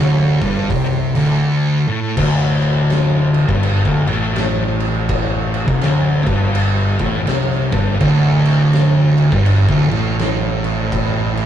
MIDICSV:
0, 0, Header, 1, 4, 480
1, 0, Start_track
1, 0, Tempo, 730816
1, 1415, Time_signature, 4, 2, 24, 8
1, 7525, End_track
2, 0, Start_track
2, 0, Title_t, "Distorted electric guitar"
2, 0, Program_c, 0, 30
2, 0, Note_on_c, 0, 38, 107
2, 263, Note_off_c, 0, 38, 0
2, 279, Note_on_c, 0, 43, 97
2, 454, Note_off_c, 0, 43, 0
2, 467, Note_on_c, 0, 48, 105
2, 745, Note_off_c, 0, 48, 0
2, 760, Note_on_c, 0, 38, 93
2, 1226, Note_off_c, 0, 38, 0
2, 1234, Note_on_c, 0, 45, 100
2, 1412, Note_off_c, 0, 45, 0
2, 1424, Note_on_c, 0, 38, 117
2, 2278, Note_off_c, 0, 38, 0
2, 2281, Note_on_c, 0, 43, 102
2, 2513, Note_off_c, 0, 43, 0
2, 2523, Note_on_c, 0, 38, 115
2, 2672, Note_off_c, 0, 38, 0
2, 2672, Note_on_c, 0, 45, 101
2, 3718, Note_off_c, 0, 45, 0
2, 3723, Note_on_c, 0, 48, 105
2, 3810, Note_off_c, 0, 48, 0
2, 3824, Note_on_c, 0, 38, 106
2, 4104, Note_off_c, 0, 38, 0
2, 4121, Note_on_c, 0, 43, 96
2, 4585, Note_off_c, 0, 43, 0
2, 4595, Note_on_c, 0, 45, 110
2, 4767, Note_off_c, 0, 45, 0
2, 4769, Note_on_c, 0, 48, 108
2, 5056, Note_off_c, 0, 48, 0
2, 5069, Note_on_c, 0, 43, 103
2, 5247, Note_off_c, 0, 43, 0
2, 5249, Note_on_c, 0, 38, 115
2, 6111, Note_off_c, 0, 38, 0
2, 6121, Note_on_c, 0, 43, 107
2, 6351, Note_off_c, 0, 43, 0
2, 6357, Note_on_c, 0, 38, 113
2, 6491, Note_off_c, 0, 38, 0
2, 6494, Note_on_c, 0, 45, 109
2, 7525, Note_off_c, 0, 45, 0
2, 7525, End_track
3, 0, Start_track
3, 0, Title_t, "Fingered electric bass"
3, 0, Program_c, 1, 33
3, 0, Note_on_c, 1, 26, 84
3, 248, Note_off_c, 1, 26, 0
3, 274, Note_on_c, 1, 31, 94
3, 444, Note_off_c, 1, 31, 0
3, 458, Note_on_c, 1, 36, 93
3, 729, Note_off_c, 1, 36, 0
3, 745, Note_on_c, 1, 26, 98
3, 920, Note_off_c, 1, 26, 0
3, 1427, Note_on_c, 1, 26, 95
3, 2262, Note_off_c, 1, 26, 0
3, 2286, Note_on_c, 1, 31, 106
3, 2508, Note_off_c, 1, 31, 0
3, 2532, Note_on_c, 1, 26, 99
3, 2664, Note_off_c, 1, 26, 0
3, 2671, Note_on_c, 1, 33, 100
3, 3697, Note_off_c, 1, 33, 0
3, 3726, Note_on_c, 1, 36, 108
3, 3811, Note_off_c, 1, 36, 0
3, 3822, Note_on_c, 1, 26, 90
3, 4092, Note_off_c, 1, 26, 0
3, 4113, Note_on_c, 1, 31, 101
3, 4564, Note_off_c, 1, 31, 0
3, 4597, Note_on_c, 1, 33, 97
3, 4766, Note_off_c, 1, 33, 0
3, 4780, Note_on_c, 1, 36, 104
3, 5050, Note_off_c, 1, 36, 0
3, 5075, Note_on_c, 1, 31, 95
3, 5245, Note_off_c, 1, 31, 0
3, 5261, Note_on_c, 1, 26, 90
3, 6096, Note_off_c, 1, 26, 0
3, 6119, Note_on_c, 1, 31, 104
3, 6342, Note_off_c, 1, 31, 0
3, 6360, Note_on_c, 1, 26, 99
3, 6496, Note_off_c, 1, 26, 0
3, 6505, Note_on_c, 1, 33, 93
3, 7525, Note_off_c, 1, 33, 0
3, 7525, End_track
4, 0, Start_track
4, 0, Title_t, "Drums"
4, 271, Note_on_c, 9, 46, 57
4, 273, Note_on_c, 9, 36, 112
4, 337, Note_off_c, 9, 46, 0
4, 339, Note_off_c, 9, 36, 0
4, 462, Note_on_c, 9, 36, 109
4, 462, Note_on_c, 9, 46, 80
4, 527, Note_off_c, 9, 36, 0
4, 528, Note_off_c, 9, 46, 0
4, 755, Note_on_c, 9, 46, 60
4, 821, Note_off_c, 9, 46, 0
4, 1425, Note_on_c, 9, 36, 119
4, 1425, Note_on_c, 9, 49, 127
4, 1425, Note_on_c, 9, 57, 87
4, 1491, Note_off_c, 9, 36, 0
4, 1491, Note_off_c, 9, 49, 0
4, 1491, Note_off_c, 9, 57, 0
4, 1722, Note_on_c, 9, 57, 54
4, 1787, Note_off_c, 9, 57, 0
4, 1905, Note_on_c, 9, 57, 81
4, 1911, Note_on_c, 9, 38, 107
4, 1971, Note_off_c, 9, 57, 0
4, 1977, Note_off_c, 9, 38, 0
4, 2195, Note_on_c, 9, 57, 62
4, 2260, Note_off_c, 9, 57, 0
4, 2291, Note_on_c, 9, 36, 100
4, 2356, Note_off_c, 9, 36, 0
4, 2384, Note_on_c, 9, 57, 84
4, 2450, Note_off_c, 9, 57, 0
4, 2531, Note_on_c, 9, 36, 107
4, 2596, Note_off_c, 9, 36, 0
4, 2676, Note_on_c, 9, 57, 62
4, 2741, Note_off_c, 9, 57, 0
4, 2863, Note_on_c, 9, 57, 88
4, 2868, Note_on_c, 9, 38, 124
4, 2928, Note_off_c, 9, 57, 0
4, 2934, Note_off_c, 9, 38, 0
4, 3154, Note_on_c, 9, 57, 63
4, 3219, Note_off_c, 9, 57, 0
4, 3342, Note_on_c, 9, 57, 89
4, 3344, Note_on_c, 9, 36, 122
4, 3408, Note_off_c, 9, 57, 0
4, 3410, Note_off_c, 9, 36, 0
4, 3637, Note_on_c, 9, 57, 58
4, 3703, Note_off_c, 9, 57, 0
4, 3730, Note_on_c, 9, 36, 107
4, 3796, Note_off_c, 9, 36, 0
4, 3819, Note_on_c, 9, 57, 80
4, 3825, Note_on_c, 9, 38, 101
4, 3884, Note_off_c, 9, 57, 0
4, 3890, Note_off_c, 9, 38, 0
4, 4116, Note_on_c, 9, 36, 111
4, 4117, Note_on_c, 9, 57, 68
4, 4182, Note_off_c, 9, 36, 0
4, 4183, Note_off_c, 9, 57, 0
4, 4301, Note_on_c, 9, 57, 100
4, 4366, Note_off_c, 9, 57, 0
4, 4591, Note_on_c, 9, 57, 70
4, 4594, Note_on_c, 9, 36, 110
4, 4657, Note_off_c, 9, 57, 0
4, 4660, Note_off_c, 9, 36, 0
4, 4775, Note_on_c, 9, 57, 94
4, 4781, Note_on_c, 9, 38, 121
4, 4840, Note_off_c, 9, 57, 0
4, 4846, Note_off_c, 9, 38, 0
4, 4932, Note_on_c, 9, 38, 34
4, 4997, Note_off_c, 9, 38, 0
4, 5073, Note_on_c, 9, 57, 67
4, 5074, Note_on_c, 9, 36, 115
4, 5138, Note_off_c, 9, 57, 0
4, 5139, Note_off_c, 9, 36, 0
4, 5257, Note_on_c, 9, 57, 93
4, 5261, Note_on_c, 9, 36, 113
4, 5323, Note_off_c, 9, 57, 0
4, 5326, Note_off_c, 9, 36, 0
4, 5553, Note_on_c, 9, 57, 67
4, 5618, Note_off_c, 9, 57, 0
4, 5735, Note_on_c, 9, 57, 80
4, 5741, Note_on_c, 9, 38, 115
4, 5801, Note_off_c, 9, 57, 0
4, 5807, Note_off_c, 9, 38, 0
4, 6027, Note_on_c, 9, 57, 63
4, 6092, Note_off_c, 9, 57, 0
4, 6122, Note_on_c, 9, 36, 113
4, 6188, Note_off_c, 9, 36, 0
4, 6213, Note_on_c, 9, 57, 94
4, 6279, Note_off_c, 9, 57, 0
4, 6362, Note_on_c, 9, 36, 118
4, 6428, Note_off_c, 9, 36, 0
4, 6510, Note_on_c, 9, 57, 65
4, 6576, Note_off_c, 9, 57, 0
4, 6695, Note_on_c, 9, 57, 83
4, 6701, Note_on_c, 9, 38, 122
4, 6760, Note_off_c, 9, 57, 0
4, 6766, Note_off_c, 9, 38, 0
4, 6989, Note_on_c, 9, 57, 61
4, 7055, Note_off_c, 9, 57, 0
4, 7173, Note_on_c, 9, 36, 116
4, 7176, Note_on_c, 9, 57, 88
4, 7239, Note_off_c, 9, 36, 0
4, 7241, Note_off_c, 9, 57, 0
4, 7470, Note_on_c, 9, 57, 58
4, 7525, Note_off_c, 9, 57, 0
4, 7525, End_track
0, 0, End_of_file